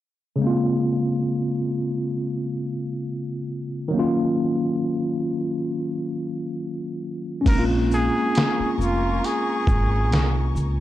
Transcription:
0.36 tine electric piano C#3 G#3
0.42 tine electric piano A#3 C4
0.47 tine electric piano F4
3.88 tine electric piano D#3 F#3
3.94 tine electric piano A#3 C#4
3.99 tine electric piano F4
7.41 tine electric piano G#3 C#4
7.46 upright bass A#1, tine electric piano A#3, string section A#4 G#5 A#5 C#6, muted trumpet A#4, kick, closed hi-hat, crash
7.52 tine electric piano D#4
7.59 tine electric piano F4
7.91 muted trumpet G#4, shaker
8.35 snare, closed hi-hat
8.60 muted upright bass stroke
8.78 upright bass F1, muted trumpet F4, shaker
9.24 muted trumpet G#4, closed hi-hat
9.67 upright bass G#1, kick, shaker
10.10 upright bass C2, snare, closed hi-hat
10.55 upright bass C#2, shaker

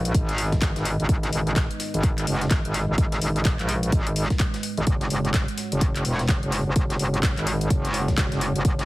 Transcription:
Already playing: wobble bass A#1, analog synth pad G#3 D#4 B4 D#5
0.05 closed hi-hat
0.14 wobble bass G#1, kick, closed hi-hat
0.29 closed hi-hat
0.38 closed hi-hat, open hi-hat
0.52 kick, snare, closed hi-hat
0.62 wobble bass G#1, kick, snare, clap, closed hi-hat
0.76 wobble bass G#1, snare, closed hi-hat
0.85 closed hi-hat, open hi-hat
1.00 wobble bass G#1, closed hi-hat
1.09 wobble bass G#1, kick, closed hi-hat
1.23 snare, closed hi-hat
1.33 wobble bass G#1, closed hi-hat, open hi-hat
1.47 closed hi-hat
1.56 kick, snare, clap, closed hi-hat
1.71 closed hi-hat
1.80 snare, closed hi-hat, open hi-hat
1.94 wobble bass G#1, closed hi-hat
2.03 kick, closed hi-hat
2.18 clap, closed hi-hat
2.27 wobble bass F#1, closed hi-hat, open hi-hat
2.41 snare, closed hi-hat
2.51 wobble bass G#1, kick, snare, clap, closed hi-hat
2.65 wobble bass G#1, closed hi-hat
2.74 snare, closed hi-hat, open hi-hat
2.89 wobble bass G#1
2.98 wobble bass G#1, kick, closed hi-hat
3.12 snare, closed hi-hat
3.22 wobble bass G#1, closed hi-hat, open hi-hat
3.36 closed hi-hat
3.45 kick, snare, clap, closed hi-hat
3.59 wobble bass A#1, clap, closed hi-hat
3.69 closed hi-hat, open hi-hat
3.83 closed hi-hat
3.92 wobble bass G#1, kick, closed hi-hat
4.07 closed hi-hat
4.16 closed hi-hat, open hi-hat
4.30 kick, snare, closed hi-hat
4.39 kick, snare, clap, closed hi-hat
4.54 snare, closed hi-hat
4.63 closed hi-hat, open hi-hat
4.77 wobble bass G#1, closed hi-hat
4.87 wobble bass F#1, analog synth pad F#4 C#5 F#5, kick, closed hi-hat
5.01 snare, closed hi-hat
5.10 wobble bass F#1, closed hi-hat, open hi-hat
5.25 closed hi-hat
5.34 kick, snare, clap, closed hi-hat
5.48 closed hi-hat
5.58 snare, closed hi-hat, open hi-hat
5.72 wobble bass F#1, closed hi-hat
5.81 kick, closed hi-hat
5.96 clap, closed hi-hat
6.05 wobble bass E1, closed hi-hat, open hi-hat
6.19 snare, closed hi-hat
6.29 wobble bass F#1, kick, snare, clap, closed hi-hat
6.43 wobble bass F#1, closed hi-hat
6.52 snare, closed hi-hat, open hi-hat
6.67 wobble bass F#1
6.76 wobble bass F#1, kick, closed hi-hat
6.90 snare, closed hi-hat
6.99 wobble bass F#1, closed hi-hat, open hi-hat
7.14 closed hi-hat
7.23 kick, snare, clap, closed hi-hat
7.38 wobble bass G#1, clap, closed hi-hat
7.47 closed hi-hat, open hi-hat
7.61 closed hi-hat
7.70 wobble bass F#1, kick, closed hi-hat
7.85 closed hi-hat
7.94 closed hi-hat, open hi-hat
8.08 kick, snare, closed hi-hat
8.18 wobble bass F#1, kick, snare, clap, closed hi-hat
8.32 wobble bass F#1, snare, closed hi-hat
8.41 closed hi-hat, open hi-hat
8.55 wobble bass F#1, closed hi-hat
8.65 wobble bass F#1, kick, closed hi-hat
8.79 snare, closed hi-hat

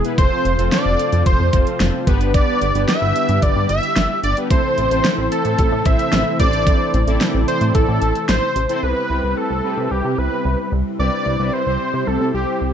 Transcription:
Already playing: string machine B2 E3 G#3 E4
0.05 analog polysynth B3 E4 G#4 B4, closed hi-hat
0.18 analog synth bass F1, string machine C3 F3 A3 F4, analog polysynth C4 F4 A4 C5, analog synth lead C5, kick, closed hi-hat
0.45 analog synth bass F1, closed hi-hat
0.59 analog synth bass F1, analog polysynth C4 F4 A4 C5, closed hi-hat
0.72 analog synth lead D5, snare, closed hi-hat
0.86 analog synth bass F1
0.99 closed hi-hat
1.12 analog synth bass F2, closed hi-hat
1.26 analog synth bass F1, analog synth lead C5, kick, closed hi-hat
1.40 analog synth bass F2
1.53 analog synth bass F1, analog polysynth C4 F4 A4 C5, kick, closed hi-hat
1.67 closed hi-hat
1.80 analog synth bass F1, snare, closed hi-hat
2.07 analog synth bass G1, string machine D3 G3 B3 G4, analog polysynth B3 D4 G4 B4, kick, closed hi-hat
2.21 closed hi-hat
2.34 analog synth lead D5, kick, closed hi-hat
2.61 analog synth bass G1, closed hi-hat
2.75 analog synth bass G1, analog polysynth B3 D4 G4 B4, closed hi-hat
2.88 analog synth lead E5, snare, closed hi-hat
3.02 analog synth bass G1
3.16 closed hi-hat
3.29 analog synth bass G2, closed hi-hat
3.42 analog synth bass G1, analog synth lead D5, kick, closed hi-hat
3.56 analog synth bass G2
3.69 analog synth bass G1, analog synth lead E5, closed hi-hat
3.83 closed hi-hat
3.96 analog synth bass G1, snare, closed hi-hat
4.24 analog synth bass G1, analog synth lead D5, closed hi-hat
4.37 analog polysynth B3 D4 G4 B4, closed hi-hat
4.50 analog synth bass A1, string machine C3 E3 A3 E4, analog polysynth C4 E4 A4 C5, analog synth lead C5, kick, closed hi-hat
4.78 analog synth bass A1, closed hi-hat
4.91 analog synth bass A1, analog polysynth C4 E4 A4 C5, closed hi-hat
5.05 snare, closed hi-hat
5.18 analog synth bass A1
5.32 analog synth lead A4, closed hi-hat
5.45 analog synth bass A2, closed hi-hat
5.58 analog synth bass A1, kick, closed hi-hat
5.72 analog synth bass A2
5.85 analog synth bass A1, analog polysynth C4 E4 A4 C5, analog synth lead E5, kick, closed hi-hat
5.99 closed hi-hat
6.12 analog synth bass A1, snare, closed hi-hat
6.40 analog synth bass A1, analog polysynth C4 E4 A4 C5, string machine E4, analog synth lead D5, kick, closed hi-hat
6.53 closed hi-hat
6.67 kick, closed hi-hat
6.94 analog synth bass A1, closed hi-hat
7.07 analog synth bass A1, analog polysynth C4 E4 A4 D5, closed hi-hat
7.21 snare, closed hi-hat
7.34 analog synth bass A1
7.48 analog synth lead C5, closed hi-hat
7.61 analog synth bass A2, closed hi-hat
7.75 analog synth bass A1, analog synth lead A4, kick, closed hi-hat
7.88 analog synth bass A2
8.02 analog synth bass A1, closed hi-hat
8.15 closed hi-hat
8.29 analog synth bass A1, analog synth lead C5, snare, closed hi-hat
8.56 analog synth bass A1, closed hi-hat
8.69 analog polysynth C4 E4 A4 C5, closed hi-hat
8.76 analog synth lead C5
8.83 analog synth bass C2, string machine C3 G3 C4 E4, analog polysynth C4 E4 G4 B4, analog synth lead B4
9.10 analog synth bass C2, analog polysynth C4 E4 G4 B4
9.23 analog synth bass C2
9.37 analog synth lead A4
9.50 analog synth bass C2
9.64 analog polysynth C4 E4 G4 B4
9.78 analog synth bass C3
9.91 analog synth bass C2, analog synth lead G4
10.05 analog synth bass C3
10.18 analog synth bass C2, analog synth lead B4
10.45 analog synth bass C2
10.72 analog synth bass C2
10.99 analog synth bass C2, analog polysynth C4 E4 G4 B4, analog synth lead D5
11.26 analog synth bass C2
11.40 analog synth bass C2, analog polysynth C4 E4 G4 B4
11.53 analog synth lead C5
11.67 analog synth bass C2, analog polysynth C4 E4 G4 C5
11.94 analog synth bass C3
12.07 analog synth bass C2, analog synth lead A4
12.21 analog synth bass C3
12.34 analog synth bass C2, analog synth lead G4
12.61 analog synth bass C2

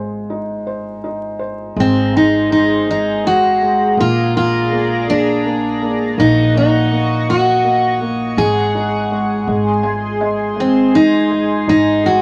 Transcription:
Already playing: upright bass G#1, felt piano G#3 C5
0.30 felt piano D#4
0.67 felt piano C5
1.04 felt piano D#4
1.39 felt piano C5
1.75 upright bass G#1, felt piano G#3, analog synth pad G#4 C5 A#5
1.80 steel-string acoustic guitar C4
2.13 felt piano G#3, steel-string acoustic guitar D#4
2.50 felt piano G#3, steel-string acoustic guitar D#4
2.87 felt piano G#3, steel-string acoustic guitar D#4
3.24 felt piano G#3, steel-string acoustic guitar F#4
3.62 felt piano G#3
3.96 upright bass A#1, felt piano A#3, analog synth pad G#4 D5 A#5
4.00 steel-string acoustic guitar F4
4.36 felt piano A#3, steel-string acoustic guitar F4
4.72 felt piano A#3
5.07 felt piano A#3, steel-string acoustic guitar D4
5.45 felt piano A#3
5.81 felt piano A#3
6.17 upright bass A#1, felt piano A#3, steel-string acoustic guitar D#4, analog synth pad F#4 D#5 C#6
6.54 felt piano A#3, steel-string acoustic guitar D#4
6.91 felt piano A#3
7.29 felt piano A#3, steel-string acoustic guitar F#4
7.64 felt piano A#3
8.01 felt piano A#3
8.37 upright bass G#1, felt piano G#3, steel-string acoustic guitar G#4, analog synth pad G#4 F#5
8.75 felt piano D#4
9.11 felt piano G#3
9.47 upright bass G#1, felt piano G#3, analog synth pad G#5 C6
9.83 felt piano G#3 G#5
10.21 felt piano G#3 D#5
10.56 felt piano G#3, steel-string acoustic guitar C4
10.93 felt piano G#3, steel-string acoustic guitar D#4
11.31 felt piano G#3
11.68 upright bass G#1, felt piano D#4, steel-string acoustic guitar D#4
12.04 felt piano G#3, steel-string acoustic guitar F#4

